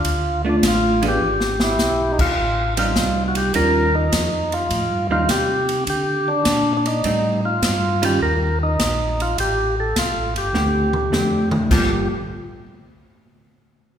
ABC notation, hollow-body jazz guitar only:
X:1
M:4/4
L:1/8
Q:"Swing" 1/4=103
K:Gm
V:1 name="Hollow-body jazz guitar"
z [A,DF]2 [=E,=B,D_A] z4 | z [G,CE]3 [E,G,_DF] z3 | z [G,CE] z6 | [G,CE] z2 [E,G,^CF] z4 |
z4 [D,A,CG] z [D,A,CG]2 | [G,B,FA] z6 z |]